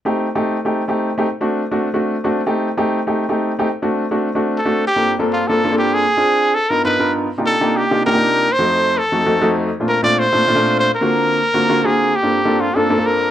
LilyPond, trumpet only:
\new Staff \with { instrumentName = "Trumpet" } { \time 4/4 \key g \minor \tempo 4 = 198 r1 | r1 | r1 | r2. a'4 |
g'4 r8 f'8 a'4 g'8 aes'8~ | aes'4. a'8 ais'8 b'4 r8 | r8 a'4 g'4 bes'4. | c''4. a'2 r8 |
r8 bes'8 d''8 c''2 c''8 | ais'2. aes'4 | g'4. f'8 a'4 bes'4 | }